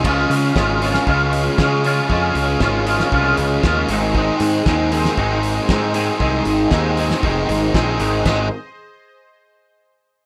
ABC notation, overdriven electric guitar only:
X:1
M:4/4
L:1/8
Q:1/4=117
K:Ab
V:1 name="Overdriven electric guitar"
[D,A,DFA]2 [D,A,DFA] [D,A,DFA] [D,A,DFA]2 [D,A,DFA] [D,A,DFA] | [D,A,DFA]2 [D,A,DFA] [D,A,DFA] [D,A,DFA]2 [D,A,DFA] [A,,E,A,CEA] | [A,,E,A,CEA]2 [A,,E,A,CEA] [A,,E,A,CEA] [A,,E,A,CEA]2 [A,,E,A,CEA] [A,,E,A,CEA] | [A,,E,A,CEA]2 [A,,E,A,CEA] [A,,E,A,CEA] [A,,E,A,CEA]2 [A,,E,A,CEA] [A,,E,A,CEA] |
[A,,E,A,CEA] z6 z |]